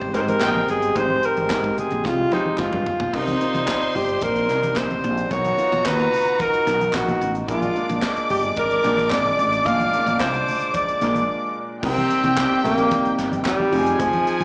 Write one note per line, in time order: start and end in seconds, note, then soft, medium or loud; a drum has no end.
0.00 0.11 G#1 loud
0.00 0.13 G#3 medium
0.00 2.96 G#3 medium
0.00 2.96 C4 medium
0.00 0.14 D#4 medium
0.00 0.14 G4 medium
0.00 2.96 G4 medium
0.00 0.15 C5 medium
0.00 0.16 C5 loud
0.13 0.35 G#2 loud
0.13 0.66 G#3 medium
0.13 0.67 D#4 medium
0.13 0.67 G4 medium
0.13 0.22 A#4 loud
0.13 0.67 C5 medium
0.13 clap medium
0.13 closed hi-hat medium
0.21 0.31 C5 medium
0.28 0.69 A#4 loud
0.28 closed hi-hat medium
0.28 high conga medium
0.41 0.62 A#1 medium
0.41 0.65 D#4 loud
0.41 0.65 C5 medium
0.41 0.65 G5 loud
0.41 kick loud
0.41 snare loud
0.41 clap loud
0.41 clap medium
0.41 muted conga soft
0.56 high conga medium
0.56 low conga medium
0.68 0.90 G1 medium
0.68 1.00 G#4 loud
0.68 closed hi-hat medium
0.82 closed hi-hat medium
0.95 1.16 G#1 loud
0.95 1.65 G#3 medium
0.95 1.66 D#4 medium
0.95 1.66 G4 medium
0.95 1.66 C5 medium
0.95 1.27 C5 loud
0.95 kick loud
0.95 closed hi-hat medium
0.95 muted conga soft
0.95 low conga medium
1.10 high conga medium
1.23 1.79 A#4 medium
1.23 closed hi-hat medium
1.37 1.47 G#1 medium
1.37 closed hi-hat soft
1.37 high conga medium
1.50 1.71 G#2 loud
1.50 kick medium
1.50 snare medium
1.50 clap medium
1.50 muted conga soft
1.64 kick medium
1.64 closed hi-hat soft
1.78 2.08 G#4 medium
1.78 closed hi-hat medium
1.78 low conga medium
1.91 2.02 A#1 medium
1.91 closed hi-hat soft
2.04 2.25 C2 medium
2.04 2.34 F4 medium
2.04 kick loud
2.04 snare medium
2.04 muted conga soft
2.04 high conga medium
2.31 2.84 G#3 medium
2.31 2.84 D#4 medium
2.31 2.59 D#4 medium
2.31 2.85 G4 medium
2.31 2.85 C5 medium
2.31 clap medium
2.31 high tom medium
2.31 muted conga soft
2.46 high conga medium
2.58 2.69 G#2 loud
2.58 3.15 F4 medium
2.58 kick loud
2.58 clap medium
2.58 mid tom medium
2.58 muted conga soft
2.73 2.83 G2 medium
2.73 mid tom medium
2.73 high conga medium
2.73 low conga medium
2.86 floor tom medium
3.00 3.10 B1 medium
3.00 floor tom loud
3.13 3.34 C2 loud
3.13 3.31 C3 medium
3.13 5.29 C3 medium
3.13 5.29 G3 medium
3.13 3.31 C4 medium
3.13 3.31 D#4 medium
3.13 5.29 D#4 medium
3.13 3.97 D#4 medium
3.13 3.31 A#4 medium
3.13 5.00 C5 medium
3.13 5.29 D5 medium
3.13 5.00 C6 medium
3.13 kick loud
3.13 crash medium
3.27 closed hi-hat soft
3.27 high conga medium
3.40 4.10 C3 medium
3.40 4.11 C4 medium
3.40 4.11 D#4 medium
3.40 4.11 F4 medium
3.40 closed hi-hat medium
3.54 3.65 C2 medium
3.54 closed hi-hat soft
3.54 high conga medium
3.68 kick medium
3.68 snare medium
3.68 clap medium
3.82 closed hi-hat soft
3.95 4.16 G1 medium
3.95 4.24 G4 medium
3.95 open hi-hat medium
3.95 low conga medium
4.08 closed hi-hat soft
4.21 4.50 A#1 medium
4.21 4.79 A#4 medium
4.21 kick loud
4.21 closed hi-hat medium
4.21 muted conga soft
4.21 high conga medium
4.36 closed hi-hat soft
4.49 4.76 C2 medium
4.49 5.02 C3 medium
4.49 5.02 C4 medium
4.49 5.02 D#4 medium
4.49 5.02 A#4 medium
4.49 snare soft
4.49 clap medium
4.49 closed hi-hat medium
4.63 closed hi-hat medium
4.63 high conga medium
4.76 4.97 A#1 medium
4.76 5.33 C5 loud
4.76 kick loud
4.76 snare loud
4.76 clap medium
4.90 closed hi-hat soft
4.90 high conga medium
4.90 low conga medium
5.04 5.30 A#1 loud
5.04 closed hi-hat medium
5.04 muted conga soft
5.17 closed hi-hat soft
5.30 5.51 B1 loud
5.30 5.48 B2 medium
5.30 5.49 B3 medium
5.30 7.46 B3 medium
5.30 7.46 D#4 loud
5.30 5.49 D#4 medium
5.30 7.17 F#4 medium
5.30 5.49 A#4 medium
5.30 5.87 C#5 loud
5.30 7.17 A#5 loud
5.30 kick loud
5.30 closed hi-hat medium
5.30 muted conga soft
5.45 closed hi-hat soft
5.45 high conga medium
5.57 6.28 B2 medium
5.57 6.28 B3 medium
5.57 6.28 D#4 medium
5.57 6.28 F4 medium
5.57 closed hi-hat medium
5.57 muted conga soft
5.72 5.82 B1 medium
5.72 closed hi-hat soft
5.72 high conga medium
5.86 6.06 D#2 loud
5.86 6.43 B4 loud
5.86 kick medium
5.86 snare loud
5.86 clap medium
5.86 muted conga soft
6.00 closed hi-hat soft
6.13 open hi-hat medium
6.13 low conga medium
6.26 closed hi-hat soft
6.39 6.97 A#4 loud
6.39 kick loud
6.39 closed hi-hat medium
6.39 muted conga soft
6.39 high conga medium
6.54 closed hi-hat soft
6.65 6.87 B1 medium
6.65 7.19 B2 medium
6.65 7.19 B3 medium
6.65 7.19 D#4 medium
6.65 7.19 A#4 medium
6.65 snare soft
6.65 clap medium
6.65 closed hi-hat medium
6.80 closed hi-hat medium
6.80 high conga medium
6.93 7.15 A#1 medium
6.93 kick loud
6.93 snare loud
6.93 clap loud
6.95 7.33 F#4 medium
6.95 clap medium
7.08 closed hi-hat soft
7.08 high conga medium
7.08 low conga medium
7.21 7.42 A1 medium
7.21 closed hi-hat medium
7.21 muted conga soft
7.35 closed hi-hat soft
7.47 7.69 A#1 loud
7.47 7.66 A#2 medium
7.47 11.65 G#3 medium
7.47 7.66 G#3 medium
7.47 11.65 D4 medium
7.47 7.66 D4 medium
7.47 7.99 F4 medium
7.47 7.66 A#4 medium
7.47 11.52 D5 medium
7.47 11.52 D6 loud
7.47 kick loud
7.47 closed hi-hat medium
7.47 muted conga soft
7.62 closed hi-hat soft
7.62 high conga medium
7.75 8.45 A#2 medium
7.75 8.46 G#3 medium
7.75 8.46 D4 medium
7.75 8.46 A#4 medium
7.75 closed hi-hat soft
7.89 8.00 A#1 loud
7.89 closed hi-hat soft
7.89 high conga medium
8.02 kick medium
8.02 snare medium
8.02 clap medium
8.02 muted conga soft
8.16 closed hi-hat soft
8.30 8.51 G1 medium
8.30 8.43 G4 medium
8.30 open hi-hat medium
8.30 low conga medium
8.43 closed hi-hat soft
8.56 8.78 G#1 medium
8.56 9.13 A#4 loud
8.56 kick loud
8.56 closed hi-hat medium
8.56 muted conga soft
8.56 high conga medium
8.71 closed hi-hat soft
8.83 9.11 A#1 medium
8.83 9.36 A#2 medium
8.83 9.37 G#3 medium
8.83 9.37 D4 medium
8.83 9.37 A#4 medium
8.83 clap medium
8.83 closed hi-hat medium
8.97 closed hi-hat medium
8.97 high conga medium
9.11 9.32 G#1 loud
9.11 9.67 D5 loud
9.11 kick loud
9.11 snare loud
9.11 clap loud
9.12 clap medium
9.25 closed hi-hat soft
9.25 high conga medium
9.25 low conga medium
9.38 9.59 A1 medium
9.38 closed hi-hat medium
9.38 muted conga soft
9.53 closed hi-hat medium
9.65 9.87 A#1 loud
9.65 9.83 A#2 medium
9.65 9.83 G#3 medium
9.65 9.83 D4 medium
9.65 9.84 F4 medium
9.65 10.20 F5 loud
9.65 kick loud
9.65 closed hi-hat medium
9.65 muted conga soft
9.65 low conga medium
9.80 closed hi-hat soft
9.80 high conga medium
9.93 10.63 A#2 medium
9.93 10.63 G#3 medium
9.93 10.00 C#4 medium
9.93 10.64 A#4 medium
9.93 closed hi-hat medium
9.93 muted conga soft
10.01 10.67 D4 medium
10.06 10.17 A#1 loud
10.06 closed hi-hat soft
10.06 high conga medium
10.20 10.41 C2 loud
10.20 10.75 C5 loud
10.20 kick medium
10.20 snare medium
10.20 clap medium
10.34 closed hi-hat soft
10.48 open hi-hat medium
10.48 low conga medium
10.61 closed hi-hat soft
10.74 11.56 D5 loud
10.74 kick loud
10.74 closed hi-hat medium
10.74 high conga medium
10.88 closed hi-hat soft
11.01 11.22 A#1 medium
11.01 11.54 A#2 medium
11.01 11.54 G#3 medium
11.01 11.54 D4 medium
11.01 11.54 A#4 medium
11.01 clap medium
11.01 closed hi-hat medium
11.01 muted conga soft
11.15 closed hi-hat soft
11.15 high conga medium
11.82 12.03 C2 loud
11.82 12.35 C3 medium
11.82 13.71 C3 medium
11.82 13.71 G3 medium
11.82 13.70 A#3 medium
11.82 12.35 C4 medium
11.82 12.60 C4 loud
11.82 14.44 D#4 loud
11.82 12.36 D#4 medium
11.82 13.42 G4 loud
11.82 12.36 A#4 medium
11.82 13.70 D5 medium
11.82 13.42 G5 loud
11.82 kick loud
11.82 crash loud
11.82 low conga medium
11.96 closed hi-hat soft
11.96 high conga medium
12.10 closed hi-hat medium
12.10 muted conga soft
12.23 12.44 C2 medium
12.23 closed hi-hat soft
12.23 high conga medium
12.37 kick medium
12.37 snare medium
12.37 clap loud
12.37 clap medium
12.63 12.85 A#1 medium
12.63 12.72 C3 medium
12.63 13.14 A#3 loud
12.63 12.73 C4 medium
12.63 12.73 D#4 medium
12.63 12.73 A#4 medium
12.63 closed hi-hat medium
12.63 muted conga soft
12.63 low conga medium
12.77 13.47 C3 medium
12.77 13.47 C4 medium
12.77 13.48 D#4 medium
12.77 13.48 A#4 medium
12.77 closed hi-hat soft
12.91 kick loud
12.91 closed hi-hat medium
12.91 muted conga soft
12.91 high conga medium
13.05 closed hi-hat soft
13.19 13.39 G1 medium
13.19 snare soft
13.19 clap medium
13.19 closed hi-hat medium
13.19 muted conga soft
13.32 closed hi-hat medium
13.32 high conga medium
13.45 14.02 G3 loud
13.45 kick loud
13.45 snare loud
13.45 clap loud
13.45 clap medium
13.60 high conga medium
13.60 low conga medium
13.72 13.93 F1 medium
13.72 14.44 F3 medium
13.72 14.44 C4 medium
13.72 14.44 D#4 medium
13.72 13.79 G4 medium
13.72 14.44 G#4 medium
13.72 14.44 G#5 loud
13.72 open hi-hat medium
13.72 muted conga soft
13.80 14.44 G#4 medium
13.86 closed hi-hat medium
13.99 14.10 F1 loud
13.99 14.44 F3 loud
13.99 kick loud
13.99 closed hi-hat medium
13.99 low conga medium
14.13 closed hi-hat soft
14.13 high conga medium
14.27 closed hi-hat medium
14.40 14.44 G1 medium
14.40 closed hi-hat soft
14.40 high conga medium